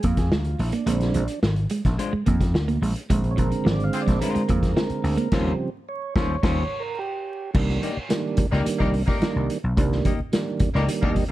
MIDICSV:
0, 0, Header, 1, 9, 480
1, 0, Start_track
1, 0, Tempo, 556586
1, 750, Time_signature, 4, 2, 24, 8
1, 9757, End_track
2, 0, Start_track
2, 0, Title_t, "Horn section"
2, 0, Program_c, 0, 61
2, 3394, Note_on_c, 0, 60, 102
2, 3394, Note_on_c, 0, 72, 111
2, 3395, Note_on_c, 0, 65, 103
2, 3395, Note_on_c, 0, 68, 97
2, 3470, Note_off_c, 0, 60, 0
2, 3470, Note_off_c, 0, 65, 0
2, 3470, Note_off_c, 0, 68, 0
2, 3470, Note_off_c, 0, 72, 0
2, 7342, Note_on_c, 0, 67, 78
2, 7344, Note_on_c, 0, 58, 86
2, 7344, Note_on_c, 0, 63, 84
2, 7344, Note_on_c, 0, 70, 93
2, 7422, Note_off_c, 0, 67, 0
2, 7423, Note_off_c, 0, 58, 0
2, 7423, Note_off_c, 0, 63, 0
2, 7423, Note_off_c, 0, 70, 0
2, 7577, Note_on_c, 0, 67, 95
2, 7580, Note_on_c, 0, 58, 99
2, 7580, Note_on_c, 0, 70, 108
2, 7581, Note_on_c, 0, 63, 92
2, 7658, Note_off_c, 0, 67, 0
2, 7660, Note_off_c, 0, 58, 0
2, 7660, Note_off_c, 0, 70, 0
2, 7661, Note_off_c, 0, 63, 0
2, 7814, Note_on_c, 0, 67, 102
2, 7816, Note_on_c, 0, 63, 100
2, 7817, Note_on_c, 0, 58, 100
2, 7817, Note_on_c, 0, 70, 108
2, 8164, Note_off_c, 0, 67, 0
2, 8165, Note_off_c, 0, 63, 0
2, 8166, Note_off_c, 0, 58, 0
2, 8166, Note_off_c, 0, 70, 0
2, 9263, Note_on_c, 0, 58, 91
2, 9263, Note_on_c, 0, 70, 99
2, 9268, Note_on_c, 0, 63, 87
2, 9270, Note_on_c, 0, 67, 85
2, 9342, Note_off_c, 0, 58, 0
2, 9342, Note_off_c, 0, 70, 0
2, 9345, Note_off_c, 0, 63, 0
2, 9347, Note_off_c, 0, 67, 0
2, 9503, Note_on_c, 0, 58, 112
2, 9503, Note_on_c, 0, 70, 121
2, 9505, Note_on_c, 0, 67, 100
2, 9506, Note_on_c, 0, 63, 98
2, 9582, Note_off_c, 0, 58, 0
2, 9582, Note_off_c, 0, 70, 0
2, 9583, Note_off_c, 0, 67, 0
2, 9584, Note_off_c, 0, 63, 0
2, 9757, End_track
3, 0, Start_track
3, 0, Title_t, "Clean electric guitar"
3, 0, Program_c, 1, 27
3, 1711, Note_on_c, 1, 56, 86
3, 1717, Note_on_c, 1, 62, 82
3, 1720, Note_on_c, 1, 72, 89
3, 1722, Note_on_c, 1, 65, 84
3, 1824, Note_off_c, 1, 56, 0
3, 1827, Note_off_c, 1, 62, 0
3, 1828, Note_off_c, 1, 72, 0
3, 1829, Note_off_c, 1, 65, 0
3, 3634, Note_on_c, 1, 56, 99
3, 3638, Note_on_c, 1, 62, 89
3, 3645, Note_on_c, 1, 65, 102
3, 3645, Note_on_c, 1, 72, 97
3, 3806, Note_off_c, 1, 56, 0
3, 3808, Note_off_c, 1, 62, 0
3, 3811, Note_off_c, 1, 65, 0
3, 3811, Note_off_c, 1, 72, 0
3, 4595, Note_on_c, 1, 61, 101
3, 4597, Note_on_c, 1, 55, 99
3, 4604, Note_on_c, 1, 65, 105
3, 4609, Note_on_c, 1, 72, 99
3, 4757, Note_off_c, 1, 61, 0
3, 4758, Note_off_c, 1, 55, 0
3, 4762, Note_off_c, 1, 65, 0
3, 4765, Note_off_c, 1, 72, 0
3, 5312, Note_on_c, 1, 55, 112
3, 5314, Note_on_c, 1, 61, 112
3, 5320, Note_on_c, 1, 65, 106
3, 5324, Note_on_c, 1, 72, 116
3, 5475, Note_off_c, 1, 55, 0
3, 5476, Note_off_c, 1, 61, 0
3, 5480, Note_off_c, 1, 65, 0
3, 5482, Note_off_c, 1, 72, 0
3, 5543, Note_on_c, 1, 61, 102
3, 5544, Note_on_c, 1, 55, 96
3, 5550, Note_on_c, 1, 65, 108
3, 5553, Note_on_c, 1, 72, 100
3, 5710, Note_off_c, 1, 61, 0
3, 5711, Note_off_c, 1, 55, 0
3, 5714, Note_off_c, 1, 65, 0
3, 5716, Note_off_c, 1, 72, 0
3, 6750, Note_on_c, 1, 58, 62
3, 6753, Note_on_c, 1, 63, 76
3, 6760, Note_on_c, 1, 74, 78
3, 6761, Note_on_c, 1, 67, 74
3, 6864, Note_off_c, 1, 58, 0
3, 6865, Note_off_c, 1, 63, 0
3, 6868, Note_off_c, 1, 74, 0
3, 6869, Note_off_c, 1, 67, 0
3, 7347, Note_on_c, 1, 74, 96
3, 7353, Note_on_c, 1, 67, 93
3, 7358, Note_on_c, 1, 63, 75
3, 7360, Note_on_c, 1, 58, 78
3, 7462, Note_off_c, 1, 74, 0
3, 7465, Note_off_c, 1, 67, 0
3, 7467, Note_off_c, 1, 63, 0
3, 7468, Note_off_c, 1, 58, 0
3, 7590, Note_on_c, 1, 74, 85
3, 7595, Note_on_c, 1, 63, 94
3, 7595, Note_on_c, 1, 67, 88
3, 7602, Note_on_c, 1, 58, 75
3, 7703, Note_off_c, 1, 74, 0
3, 7706, Note_off_c, 1, 63, 0
3, 7706, Note_off_c, 1, 67, 0
3, 7709, Note_off_c, 1, 58, 0
3, 7833, Note_on_c, 1, 74, 67
3, 7836, Note_on_c, 1, 67, 60
3, 7837, Note_on_c, 1, 63, 58
3, 7846, Note_on_c, 1, 58, 54
3, 7920, Note_off_c, 1, 74, 0
3, 7922, Note_off_c, 1, 63, 0
3, 7922, Note_off_c, 1, 67, 0
3, 7927, Note_off_c, 1, 58, 0
3, 8674, Note_on_c, 1, 63, 74
3, 8675, Note_on_c, 1, 58, 76
3, 8678, Note_on_c, 1, 67, 67
3, 8683, Note_on_c, 1, 75, 73
3, 8785, Note_off_c, 1, 63, 0
3, 8786, Note_off_c, 1, 58, 0
3, 8787, Note_off_c, 1, 67, 0
3, 8790, Note_off_c, 1, 75, 0
3, 9272, Note_on_c, 1, 74, 94
3, 9279, Note_on_c, 1, 67, 82
3, 9281, Note_on_c, 1, 63, 77
3, 9287, Note_on_c, 1, 58, 73
3, 9384, Note_off_c, 1, 74, 0
3, 9387, Note_off_c, 1, 67, 0
3, 9389, Note_off_c, 1, 63, 0
3, 9391, Note_off_c, 1, 58, 0
3, 9507, Note_on_c, 1, 75, 92
3, 9511, Note_on_c, 1, 67, 86
3, 9518, Note_on_c, 1, 63, 81
3, 9520, Note_on_c, 1, 58, 73
3, 9682, Note_off_c, 1, 75, 0
3, 9683, Note_off_c, 1, 67, 0
3, 9687, Note_off_c, 1, 63, 0
3, 9688, Note_off_c, 1, 58, 0
3, 9757, End_track
4, 0, Start_track
4, 0, Title_t, "Tonewheel organ"
4, 0, Program_c, 2, 16
4, 38, Note_on_c, 2, 65, 82
4, 156, Note_on_c, 2, 68, 89
4, 157, Note_off_c, 2, 65, 0
4, 276, Note_on_c, 2, 65, 77
4, 277, Note_off_c, 2, 68, 0
4, 518, Note_on_c, 2, 64, 79
4, 520, Note_off_c, 2, 65, 0
4, 638, Note_off_c, 2, 64, 0
4, 638, Note_on_c, 2, 62, 76
4, 746, Note_off_c, 2, 62, 0
4, 747, Note_on_c, 2, 50, 56
4, 753, Note_on_c, 2, 56, 59
4, 760, Note_on_c, 2, 60, 62
4, 764, Note_on_c, 2, 62, 82
4, 1068, Note_off_c, 2, 50, 0
4, 1071, Note_off_c, 2, 56, 0
4, 1075, Note_off_c, 2, 60, 0
4, 1204, Note_off_c, 2, 62, 0
4, 2669, Note_on_c, 2, 50, 62
4, 2677, Note_on_c, 2, 56, 58
4, 2682, Note_on_c, 2, 60, 63
4, 2855, Note_on_c, 2, 73, 69
4, 2913, Note_off_c, 2, 73, 0
4, 2917, Note_on_c, 2, 70, 86
4, 3155, Note_on_c, 2, 74, 101
4, 3162, Note_off_c, 2, 70, 0
4, 3309, Note_on_c, 2, 77, 102
4, 3318, Note_off_c, 2, 74, 0
4, 3463, Note_on_c, 2, 74, 85
4, 3475, Note_off_c, 2, 77, 0
4, 3616, Note_off_c, 2, 74, 0
4, 3618, Note_on_c, 2, 70, 74
4, 4556, Note_off_c, 2, 50, 0
4, 4560, Note_off_c, 2, 56, 0
4, 4563, Note_off_c, 2, 60, 0
4, 4589, Note_on_c, 2, 49, 57
4, 4593, Note_on_c, 2, 53, 60
4, 4594, Note_on_c, 2, 55, 56
4, 4601, Note_on_c, 2, 60, 68
4, 4791, Note_off_c, 2, 70, 0
4, 4909, Note_off_c, 2, 49, 0
4, 4912, Note_off_c, 2, 53, 0
4, 4912, Note_off_c, 2, 55, 0
4, 4916, Note_off_c, 2, 60, 0
4, 5076, Note_on_c, 2, 73, 103
4, 5298, Note_off_c, 2, 73, 0
4, 5308, Note_on_c, 2, 73, 116
4, 5865, Note_on_c, 2, 70, 82
4, 5887, Note_off_c, 2, 73, 0
4, 6026, Note_on_c, 2, 67, 77
4, 6033, Note_off_c, 2, 70, 0
4, 6475, Note_off_c, 2, 67, 0
4, 6499, Note_on_c, 2, 51, 77
4, 6503, Note_on_c, 2, 55, 64
4, 6509, Note_on_c, 2, 58, 70
4, 6515, Note_on_c, 2, 62, 85
4, 6819, Note_off_c, 2, 51, 0
4, 6821, Note_off_c, 2, 55, 0
4, 6823, Note_off_c, 2, 58, 0
4, 6826, Note_off_c, 2, 62, 0
4, 6974, Note_on_c, 2, 51, 84
4, 6982, Note_on_c, 2, 55, 77
4, 6987, Note_on_c, 2, 58, 80
4, 6992, Note_on_c, 2, 62, 94
4, 7296, Note_off_c, 2, 51, 0
4, 7300, Note_off_c, 2, 55, 0
4, 7302, Note_off_c, 2, 58, 0
4, 7305, Note_off_c, 2, 62, 0
4, 7455, Note_on_c, 2, 51, 100
4, 7463, Note_on_c, 2, 55, 88
4, 7467, Note_on_c, 2, 58, 98
4, 7469, Note_on_c, 2, 62, 113
4, 7776, Note_off_c, 2, 51, 0
4, 7780, Note_off_c, 2, 55, 0
4, 7783, Note_off_c, 2, 58, 0
4, 7783, Note_off_c, 2, 62, 0
4, 7936, Note_on_c, 2, 51, 93
4, 7943, Note_on_c, 2, 55, 95
4, 7947, Note_on_c, 2, 58, 84
4, 7950, Note_on_c, 2, 62, 109
4, 8257, Note_off_c, 2, 51, 0
4, 8260, Note_off_c, 2, 55, 0
4, 8262, Note_off_c, 2, 58, 0
4, 8264, Note_off_c, 2, 62, 0
4, 8423, Note_on_c, 2, 51, 100
4, 8430, Note_on_c, 2, 55, 85
4, 8435, Note_on_c, 2, 58, 80
4, 8439, Note_on_c, 2, 62, 102
4, 8740, Note_off_c, 2, 51, 0
4, 8743, Note_off_c, 2, 55, 0
4, 8746, Note_off_c, 2, 58, 0
4, 8748, Note_off_c, 2, 62, 0
4, 8901, Note_on_c, 2, 51, 95
4, 8906, Note_on_c, 2, 55, 73
4, 8912, Note_on_c, 2, 58, 74
4, 8915, Note_on_c, 2, 62, 96
4, 9219, Note_off_c, 2, 51, 0
4, 9222, Note_off_c, 2, 55, 0
4, 9224, Note_off_c, 2, 58, 0
4, 9226, Note_off_c, 2, 62, 0
4, 9374, Note_on_c, 2, 51, 95
4, 9384, Note_on_c, 2, 55, 97
4, 9388, Note_on_c, 2, 58, 91
4, 9392, Note_on_c, 2, 62, 103
4, 9695, Note_off_c, 2, 51, 0
4, 9700, Note_off_c, 2, 55, 0
4, 9702, Note_off_c, 2, 58, 0
4, 9705, Note_off_c, 2, 62, 0
4, 9757, End_track
5, 0, Start_track
5, 0, Title_t, "Clean electric guitar"
5, 0, Program_c, 3, 27
5, 37, Note_on_c, 3, 58, 78
5, 116, Note_off_c, 3, 58, 0
5, 280, Note_on_c, 3, 56, 69
5, 358, Note_off_c, 3, 56, 0
5, 629, Note_on_c, 3, 58, 80
5, 711, Note_off_c, 3, 58, 0
5, 748, Note_on_c, 3, 58, 83
5, 831, Note_off_c, 3, 58, 0
5, 989, Note_on_c, 3, 53, 75
5, 1071, Note_off_c, 3, 53, 0
5, 1474, Note_on_c, 3, 56, 74
5, 1555, Note_off_c, 3, 56, 0
5, 1835, Note_on_c, 3, 56, 82
5, 1916, Note_off_c, 3, 56, 0
5, 1951, Note_on_c, 3, 58, 81
5, 2032, Note_off_c, 3, 58, 0
5, 2312, Note_on_c, 3, 58, 81
5, 2394, Note_off_c, 3, 58, 0
5, 2437, Note_on_c, 3, 56, 85
5, 2517, Note_off_c, 3, 56, 0
5, 2672, Note_on_c, 3, 56, 89
5, 2754, Note_off_c, 3, 56, 0
5, 2907, Note_on_c, 3, 53, 77
5, 2990, Note_off_c, 3, 53, 0
5, 3147, Note_on_c, 3, 53, 77
5, 3230, Note_off_c, 3, 53, 0
5, 3505, Note_on_c, 3, 56, 69
5, 3589, Note_off_c, 3, 56, 0
5, 3750, Note_on_c, 3, 56, 77
5, 3832, Note_off_c, 3, 56, 0
5, 3868, Note_on_c, 3, 58, 82
5, 3951, Note_off_c, 3, 58, 0
5, 4110, Note_on_c, 3, 56, 74
5, 4192, Note_off_c, 3, 56, 0
5, 4463, Note_on_c, 3, 58, 80
5, 4547, Note_off_c, 3, 58, 0
5, 9757, End_track
6, 0, Start_track
6, 0, Title_t, "Slap bass"
6, 0, Program_c, 4, 36
6, 34, Note_on_c, 4, 41, 86
6, 264, Note_off_c, 4, 41, 0
6, 264, Note_on_c, 4, 38, 83
6, 456, Note_off_c, 4, 38, 0
6, 510, Note_on_c, 4, 34, 92
6, 605, Note_off_c, 4, 34, 0
6, 743, Note_on_c, 4, 34, 124
6, 936, Note_off_c, 4, 34, 0
6, 991, Note_on_c, 4, 34, 103
6, 1086, Note_off_c, 4, 34, 0
6, 1229, Note_on_c, 4, 32, 85
6, 1420, Note_off_c, 4, 32, 0
6, 1597, Note_on_c, 4, 34, 85
6, 1690, Note_off_c, 4, 34, 0
6, 1961, Note_on_c, 4, 41, 81
6, 2197, Note_off_c, 4, 41, 0
6, 2197, Note_on_c, 4, 38, 83
6, 2385, Note_off_c, 4, 38, 0
6, 2430, Note_on_c, 4, 34, 95
6, 2525, Note_off_c, 4, 34, 0
6, 2676, Note_on_c, 4, 34, 106
6, 2864, Note_off_c, 4, 34, 0
6, 2918, Note_on_c, 4, 34, 105
6, 3010, Note_off_c, 4, 34, 0
6, 3154, Note_on_c, 4, 32, 85
6, 3343, Note_off_c, 4, 32, 0
6, 3517, Note_on_c, 4, 34, 82
6, 3610, Note_off_c, 4, 34, 0
6, 3877, Note_on_c, 4, 41, 84
6, 4065, Note_off_c, 4, 41, 0
6, 4344, Note_on_c, 4, 38, 96
6, 4442, Note_off_c, 4, 38, 0
6, 4591, Note_on_c, 4, 39, 100
6, 4755, Note_off_c, 4, 39, 0
6, 5309, Note_on_c, 4, 39, 98
6, 5473, Note_off_c, 4, 39, 0
6, 5550, Note_on_c, 4, 39, 105
6, 5714, Note_off_c, 4, 39, 0
6, 6509, Note_on_c, 4, 36, 124
6, 6700, Note_off_c, 4, 36, 0
6, 7349, Note_on_c, 4, 37, 94
6, 7445, Note_off_c, 4, 37, 0
6, 7594, Note_on_c, 4, 36, 91
6, 7783, Note_off_c, 4, 36, 0
6, 8072, Note_on_c, 4, 36, 93
6, 8166, Note_off_c, 4, 36, 0
6, 8312, Note_on_c, 4, 35, 93
6, 8406, Note_off_c, 4, 35, 0
6, 8429, Note_on_c, 4, 36, 112
6, 8620, Note_off_c, 4, 36, 0
6, 9270, Note_on_c, 4, 37, 91
6, 9365, Note_off_c, 4, 37, 0
6, 9513, Note_on_c, 4, 39, 106
6, 9607, Note_off_c, 4, 39, 0
6, 9757, End_track
7, 0, Start_track
7, 0, Title_t, "Muted clean electric guitar strokes"
7, 519, Note_on_c, 9, 29, 47
7, 605, Note_off_c, 9, 29, 0
7, 867, Note_on_c, 9, 29, 44
7, 954, Note_off_c, 9, 29, 0
7, 1715, Note_on_c, 9, 29, 44
7, 1801, Note_off_c, 9, 29, 0
7, 2193, Note_on_c, 9, 29, 44
7, 2279, Note_off_c, 9, 29, 0
7, 3032, Note_on_c, 9, 29, 46
7, 3119, Note_off_c, 9, 29, 0
7, 3270, Note_on_c, 9, 29, 40
7, 3356, Note_off_c, 9, 29, 0
7, 3632, Note_on_c, 9, 29, 47
7, 3718, Note_off_c, 9, 29, 0
7, 4346, Note_on_c, 9, 29, 51
7, 4433, Note_off_c, 9, 29, 0
7, 9757, End_track
8, 0, Start_track
8, 0, Title_t, "Muted slap bass strokes"
8, 1837, Note_on_c, 9, 29, 50
8, 1923, Note_off_c, 9, 29, 0
8, 3758, Note_on_c, 9, 29, 50
8, 3844, Note_off_c, 9, 29, 0
8, 4227, Note_on_c, 9, 29, 54
8, 4313, Note_off_c, 9, 29, 0
8, 6873, Note_on_c, 9, 29, 48
8, 6959, Note_off_c, 9, 29, 0
8, 7227, Note_on_c, 9, 29, 48
8, 7314, Note_off_c, 9, 29, 0
8, 7472, Note_on_c, 9, 29, 50
8, 7559, Note_off_c, 9, 29, 0
8, 7948, Note_on_c, 9, 29, 48
8, 8034, Note_off_c, 9, 29, 0
8, 8795, Note_on_c, 9, 29, 54
8, 8881, Note_off_c, 9, 29, 0
8, 9145, Note_on_c, 9, 29, 45
8, 9231, Note_off_c, 9, 29, 0
8, 9392, Note_on_c, 9, 29, 50
8, 9478, Note_off_c, 9, 29, 0
8, 9757, End_track
9, 0, Start_track
9, 0, Title_t, "Drums"
9, 24, Note_on_c, 9, 42, 65
9, 33, Note_on_c, 9, 36, 82
9, 110, Note_off_c, 9, 42, 0
9, 119, Note_off_c, 9, 36, 0
9, 147, Note_on_c, 9, 42, 49
9, 149, Note_on_c, 9, 36, 91
9, 152, Note_on_c, 9, 38, 30
9, 233, Note_off_c, 9, 42, 0
9, 235, Note_off_c, 9, 36, 0
9, 239, Note_off_c, 9, 38, 0
9, 273, Note_on_c, 9, 38, 100
9, 359, Note_off_c, 9, 38, 0
9, 383, Note_on_c, 9, 42, 38
9, 470, Note_off_c, 9, 42, 0
9, 510, Note_on_c, 9, 46, 71
9, 596, Note_off_c, 9, 46, 0
9, 624, Note_on_c, 9, 42, 51
9, 710, Note_off_c, 9, 42, 0
9, 748, Note_on_c, 9, 42, 96
9, 834, Note_off_c, 9, 42, 0
9, 866, Note_on_c, 9, 42, 35
9, 874, Note_on_c, 9, 38, 35
9, 952, Note_off_c, 9, 42, 0
9, 961, Note_off_c, 9, 38, 0
9, 985, Note_on_c, 9, 42, 70
9, 1071, Note_off_c, 9, 42, 0
9, 1102, Note_on_c, 9, 42, 58
9, 1188, Note_off_c, 9, 42, 0
9, 1231, Note_on_c, 9, 38, 105
9, 1318, Note_off_c, 9, 38, 0
9, 1347, Note_on_c, 9, 42, 36
9, 1433, Note_off_c, 9, 42, 0
9, 1463, Note_on_c, 9, 42, 81
9, 1549, Note_off_c, 9, 42, 0
9, 1594, Note_on_c, 9, 36, 83
9, 1595, Note_on_c, 9, 42, 48
9, 1597, Note_on_c, 9, 38, 33
9, 1681, Note_off_c, 9, 36, 0
9, 1681, Note_off_c, 9, 42, 0
9, 1683, Note_off_c, 9, 38, 0
9, 1718, Note_on_c, 9, 42, 93
9, 1804, Note_off_c, 9, 42, 0
9, 1952, Note_on_c, 9, 42, 65
9, 1958, Note_on_c, 9, 36, 90
9, 2038, Note_off_c, 9, 42, 0
9, 2044, Note_off_c, 9, 36, 0
9, 2075, Note_on_c, 9, 36, 94
9, 2078, Note_on_c, 9, 42, 49
9, 2084, Note_on_c, 9, 38, 36
9, 2161, Note_off_c, 9, 36, 0
9, 2165, Note_off_c, 9, 42, 0
9, 2170, Note_off_c, 9, 38, 0
9, 2199, Note_on_c, 9, 38, 91
9, 2285, Note_off_c, 9, 38, 0
9, 2315, Note_on_c, 9, 42, 41
9, 2402, Note_off_c, 9, 42, 0
9, 2442, Note_on_c, 9, 46, 68
9, 2528, Note_off_c, 9, 46, 0
9, 2551, Note_on_c, 9, 42, 51
9, 2637, Note_off_c, 9, 42, 0
9, 2675, Note_on_c, 9, 36, 107
9, 2676, Note_on_c, 9, 42, 104
9, 2761, Note_off_c, 9, 36, 0
9, 2762, Note_off_c, 9, 42, 0
9, 2793, Note_on_c, 9, 42, 35
9, 2879, Note_off_c, 9, 42, 0
9, 2914, Note_on_c, 9, 42, 77
9, 2917, Note_on_c, 9, 36, 83
9, 3000, Note_off_c, 9, 42, 0
9, 3003, Note_off_c, 9, 36, 0
9, 3033, Note_on_c, 9, 42, 53
9, 3119, Note_off_c, 9, 42, 0
9, 3160, Note_on_c, 9, 38, 102
9, 3247, Note_off_c, 9, 38, 0
9, 3277, Note_on_c, 9, 42, 39
9, 3363, Note_off_c, 9, 42, 0
9, 3389, Note_on_c, 9, 42, 86
9, 3475, Note_off_c, 9, 42, 0
9, 3515, Note_on_c, 9, 36, 82
9, 3517, Note_on_c, 9, 42, 52
9, 3519, Note_on_c, 9, 38, 32
9, 3601, Note_off_c, 9, 36, 0
9, 3603, Note_off_c, 9, 42, 0
9, 3605, Note_off_c, 9, 38, 0
9, 3635, Note_on_c, 9, 42, 97
9, 3722, Note_off_c, 9, 42, 0
9, 3755, Note_on_c, 9, 42, 36
9, 3841, Note_off_c, 9, 42, 0
9, 3869, Note_on_c, 9, 42, 77
9, 3876, Note_on_c, 9, 36, 87
9, 3956, Note_off_c, 9, 42, 0
9, 3962, Note_off_c, 9, 36, 0
9, 3991, Note_on_c, 9, 36, 85
9, 3994, Note_on_c, 9, 42, 55
9, 4000, Note_on_c, 9, 38, 35
9, 4077, Note_off_c, 9, 36, 0
9, 4080, Note_off_c, 9, 42, 0
9, 4086, Note_off_c, 9, 38, 0
9, 4113, Note_on_c, 9, 38, 112
9, 4199, Note_off_c, 9, 38, 0
9, 4223, Note_on_c, 9, 42, 38
9, 4310, Note_off_c, 9, 42, 0
9, 4350, Note_on_c, 9, 46, 73
9, 4436, Note_off_c, 9, 46, 0
9, 4466, Note_on_c, 9, 42, 63
9, 4552, Note_off_c, 9, 42, 0
9, 4584, Note_on_c, 9, 49, 85
9, 4589, Note_on_c, 9, 36, 103
9, 4589, Note_on_c, 9, 38, 104
9, 4671, Note_off_c, 9, 49, 0
9, 4675, Note_off_c, 9, 36, 0
9, 4675, Note_off_c, 9, 38, 0
9, 5309, Note_on_c, 9, 36, 113
9, 5313, Note_on_c, 9, 38, 102
9, 5395, Note_off_c, 9, 36, 0
9, 5399, Note_off_c, 9, 38, 0
9, 5547, Note_on_c, 9, 49, 81
9, 5548, Note_on_c, 9, 36, 118
9, 5551, Note_on_c, 9, 38, 107
9, 5633, Note_off_c, 9, 49, 0
9, 5634, Note_off_c, 9, 36, 0
9, 5637, Note_off_c, 9, 38, 0
9, 6507, Note_on_c, 9, 49, 94
9, 6508, Note_on_c, 9, 36, 120
9, 6593, Note_off_c, 9, 49, 0
9, 6594, Note_off_c, 9, 36, 0
9, 6634, Note_on_c, 9, 38, 34
9, 6720, Note_off_c, 9, 38, 0
9, 6751, Note_on_c, 9, 42, 70
9, 6837, Note_off_c, 9, 42, 0
9, 6986, Note_on_c, 9, 42, 90
9, 6989, Note_on_c, 9, 38, 104
9, 7072, Note_off_c, 9, 42, 0
9, 7076, Note_off_c, 9, 38, 0
9, 7218, Note_on_c, 9, 42, 88
9, 7226, Note_on_c, 9, 36, 103
9, 7305, Note_off_c, 9, 42, 0
9, 7312, Note_off_c, 9, 36, 0
9, 7355, Note_on_c, 9, 38, 35
9, 7441, Note_off_c, 9, 38, 0
9, 7471, Note_on_c, 9, 42, 93
9, 7557, Note_off_c, 9, 42, 0
9, 7589, Note_on_c, 9, 38, 36
9, 7592, Note_on_c, 9, 36, 80
9, 7676, Note_off_c, 9, 38, 0
9, 7678, Note_off_c, 9, 36, 0
9, 7708, Note_on_c, 9, 46, 70
9, 7794, Note_off_c, 9, 46, 0
9, 7828, Note_on_c, 9, 36, 95
9, 7833, Note_on_c, 9, 38, 36
9, 7914, Note_off_c, 9, 36, 0
9, 7920, Note_off_c, 9, 38, 0
9, 7948, Note_on_c, 9, 42, 81
9, 7953, Note_on_c, 9, 38, 90
9, 8034, Note_off_c, 9, 42, 0
9, 8039, Note_off_c, 9, 38, 0
9, 8191, Note_on_c, 9, 42, 73
9, 8277, Note_off_c, 9, 42, 0
9, 8428, Note_on_c, 9, 36, 119
9, 8432, Note_on_c, 9, 42, 91
9, 8514, Note_off_c, 9, 36, 0
9, 8518, Note_off_c, 9, 42, 0
9, 8555, Note_on_c, 9, 38, 35
9, 8641, Note_off_c, 9, 38, 0
9, 8667, Note_on_c, 9, 42, 80
9, 8669, Note_on_c, 9, 36, 95
9, 8753, Note_off_c, 9, 42, 0
9, 8756, Note_off_c, 9, 36, 0
9, 8907, Note_on_c, 9, 42, 94
9, 8911, Note_on_c, 9, 38, 105
9, 8993, Note_off_c, 9, 42, 0
9, 8997, Note_off_c, 9, 38, 0
9, 9138, Note_on_c, 9, 42, 84
9, 9144, Note_on_c, 9, 36, 99
9, 9224, Note_off_c, 9, 42, 0
9, 9230, Note_off_c, 9, 36, 0
9, 9269, Note_on_c, 9, 38, 34
9, 9355, Note_off_c, 9, 38, 0
9, 9388, Note_on_c, 9, 42, 97
9, 9475, Note_off_c, 9, 42, 0
9, 9510, Note_on_c, 9, 36, 101
9, 9596, Note_off_c, 9, 36, 0
9, 9622, Note_on_c, 9, 46, 69
9, 9628, Note_on_c, 9, 36, 85
9, 9709, Note_off_c, 9, 46, 0
9, 9714, Note_off_c, 9, 36, 0
9, 9757, End_track
0, 0, End_of_file